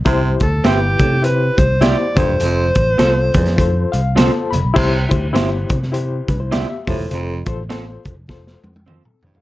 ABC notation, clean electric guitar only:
X:1
M:4/4
L:1/8
Q:"Swing" 1/4=102
K:C
V:1 name="Clean electric guitar"
z2 [CEGc] z3 [CEGc] z | z2 [CFAc] z3 [CFAc] z | z2 [CEGc] z3 [CEGc] z | z2 [CFAc] z3 [CFAc] z |]